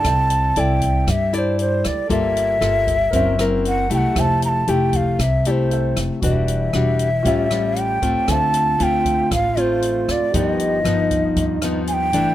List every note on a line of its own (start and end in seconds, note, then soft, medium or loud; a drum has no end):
0.00 0.54 E4 medium
0.00 0.54 A4 medium
0.00 2.05 A4 soft
0.00 0.55 D5 medium
0.00 2.06 D5 soft
0.00 0.61 A5 loud
0.04 0.52 C2 medium
0.04 1.05 C4 soft
0.04 2.07 E5 soft
0.04 2.08 G5 soft
0.04 kick medium
0.04 cross-stick medium
0.04 closed hi-hat medium
0.30 closed hi-hat soft
0.56 1.04 C2 medium
0.56 1.08 E4 medium
0.56 1.08 A4 medium
0.56 1.08 D5 medium
0.56 1.12 G5 medium
0.56 closed hi-hat soft
0.81 kick soft
0.81 closed hi-hat soft
1.07 1.81 G2 medium
1.07 2.08 G3 medium
1.07 1.36 E5 medium
1.07 kick medium
1.07 cross-stick medium
1.07 closed hi-hat medium
1.33 2.08 E4 medium
1.33 2.09 A4 medium
1.33 2.09 D5 medium
1.33 1.39 D5 medium
1.33 closed hi-hat soft
1.38 1.60 C5 medium
1.59 1.88 C5 medium
1.59 closed hi-hat soft
1.84 1.97 D2 medium
1.84 2.10 D5 medium
1.84 cross-stick medium
1.84 closed hi-hat soft
2.07 2.58 G1 medium
2.07 3.10 G3 medium
2.07 2.58 A#3 medium
2.07 2.58 F4 medium
2.07 3.10 A4 soft
2.07 2.58 A4 medium
2.07 3.12 D5 soft
2.07 3.43 E5 loud
2.07 kick medium
2.07 closed hi-hat soft
2.14 3.13 F4 soft
2.37 closed hi-hat soft
2.61 3.10 G1 medium
2.61 2.96 A#3 medium
2.61 2.96 F4 medium
2.61 2.96 A4 medium
2.61 cross-stick medium
2.61 closed hi-hat soft
2.87 kick medium
2.87 closed hi-hat soft
3.11 3.86 F#1 medium
3.11 4.14 F#3 medium
3.11 3.35 C4 soft
3.11 4.15 C#4 medium
3.11 3.35 E4 medium
3.11 4.13 A#4 medium
3.11 3.35 A#4 medium
3.11 4.14 C5 medium
3.11 kick medium
3.11 closed hi-hat medium
3.16 4.16 E5 medium
3.39 3.87 C4 medium
3.39 3.87 E4 medium
3.39 3.87 A#4 medium
3.39 cross-stick medium
3.39 closed hi-hat soft
3.65 3.92 F#5 loud
3.65 closed hi-hat soft
3.90 4.02 C2 medium
3.90 4.63 A3 medium
3.90 4.64 E4 medium
3.90 4.64 G4 medium
3.90 closed hi-hat soft
3.94 4.22 F#5 medium
3.94 3.98 G5 medium
4.13 4.64 F1 medium
4.13 5.17 F3 medium
4.13 5.66 G4 soft
4.13 5.67 A4 soft
4.13 5.68 C5 soft
4.13 kick medium
4.13 cross-stick medium
4.13 closed hi-hat medium
4.18 5.69 E5 soft
4.18 4.44 A5 loud
4.42 4.50 A#5 medium
4.42 closed hi-hat soft
4.49 4.72 A5 medium
4.67 5.16 F1 medium
4.67 5.19 A3 medium
4.67 5.20 E4 medium
4.67 5.19 G4 medium
4.67 4.98 G5 medium
4.67 closed hi-hat soft
4.93 5.23 F5 medium
4.93 kick soft
4.93 closed hi-hat soft
5.19 5.92 C2 medium
5.19 6.20 C3 medium
5.19 5.49 E5 medium
5.19 kick medium
5.19 cross-stick medium
5.19 closed hi-hat medium
5.45 6.21 A3 medium
5.45 6.21 E4 medium
5.45 6.21 G4 medium
5.45 5.52 D5 medium
5.45 closed hi-hat soft
5.51 5.98 C5 medium
5.70 6.22 G4 soft
5.70 6.23 A4 soft
5.70 6.23 C5 soft
5.70 6.24 E5 soft
5.70 closed hi-hat soft
5.96 6.08 F1 medium
5.96 cross-stick medium
5.96 closed hi-hat soft
6.20 6.70 E1 medium
6.20 7.23 E3 medium
6.20 6.70 G3 medium
6.20 6.70 D4 medium
6.20 7.22 F#4 soft
6.20 6.71 F#4 medium
6.20 7.24 B4 soft
6.20 kick medium
6.20 closed hi-hat medium
6.25 7.25 D5 soft
6.25 7.82 E5 medium
6.48 closed hi-hat soft
6.73 7.21 E1 medium
6.73 7.09 G3 soft
6.73 7.09 D4 medium
6.73 7.09 F#4 medium
6.73 cross-stick medium
6.73 closed hi-hat soft
6.99 closed hi-hat soft
7.23 7.98 A1 medium
7.23 8.26 A2 soft
7.23 7.47 G3 soft
7.23 7.47 C#4 soft
7.23 8.25 F4 medium
7.23 8.26 G4 medium
7.23 8.27 C#5 medium
7.23 kick medium
7.23 closed hi-hat medium
7.27 7.48 F4 medium
7.27 8.27 E5 medium
7.51 7.99 G3 medium
7.51 7.99 C#4 medium
7.51 7.99 F4 medium
7.51 cross-stick medium
7.51 closed hi-hat soft
7.76 closed hi-hat soft
7.80 8.31 G5 medium
8.02 8.14 A1 medium
8.02 8.75 A3 medium
8.02 8.76 C4 medium
8.02 8.76 F4 medium
8.02 kick soft
8.02 closed hi-hat soft
8.26 8.76 D2 medium
8.26 9.29 D3 medium
8.26 10.29 F4 soft
8.26 10.34 F4 medium
8.26 10.30 A4 soft
8.26 8.84 A5 loud
8.26 kick medium
8.26 cross-stick medium
8.26 closed hi-hat medium
8.30 10.31 C5 soft
8.30 10.32 E5 soft
8.54 closed hi-hat soft
8.80 9.28 D2 medium
8.80 9.31 A3 medium
8.80 9.31 C4 medium
8.80 9.31 F4 medium
8.80 9.33 G5 loud
8.80 closed hi-hat soft
9.05 kick medium
9.05 closed hi-hat soft
9.31 10.04 A1 medium
9.31 10.32 A2 soft
9.31 9.62 F5 medium
9.31 kick medium
9.31 cross-stick medium
9.31 closed hi-hat medium
9.57 10.32 A3 medium
9.57 10.32 C4 medium
9.57 10.32 F4 medium
9.57 10.13 C5 medium
9.57 closed hi-hat soft
9.82 closed hi-hat soft
10.08 10.20 D2 medium
10.08 10.35 D5 medium
10.08 cross-stick medium
10.08 closed hi-hat soft
10.31 10.82 G1 medium
10.31 11.35 G2 medium
10.31 10.82 F3 medium
10.31 10.82 B3 medium
10.31 12.34 F4 soft
10.31 10.86 G4 loud
10.31 12.35 A#4 soft
10.31 12.35 B4 soft
10.31 kick medium
10.31 closed hi-hat medium
10.35 10.82 D#4 medium
10.35 10.48 D5 medium
10.35 12.35 D#5 soft
10.48 11.59 D#5 medium
10.60 closed hi-hat soft
10.84 11.33 G1 medium
10.84 11.58 F3 medium
10.84 11.58 B3 medium
10.84 12.35 D#4 medium
10.84 11.59 D#4 medium
10.84 cross-stick medium
10.84 closed hi-hat soft
11.11 kick medium
11.11 closed hi-hat soft
11.36 12.10 D#2 medium
11.36 12.35 G2 medium
11.36 kick medium
11.36 closed hi-hat medium
11.62 12.10 F3 medium
11.62 12.11 B3 medium
11.62 12.10 D#4 medium
11.62 cross-stick medium
11.62 closed hi-hat soft
11.87 11.94 G#5 medium
11.87 closed hi-hat soft
11.93 12.35 G5 loud
12.13 12.25 G1 medium
12.13 12.35 E3 medium
12.13 12.35 A3 medium
12.13 12.35 D4 medium
12.13 closed hi-hat soft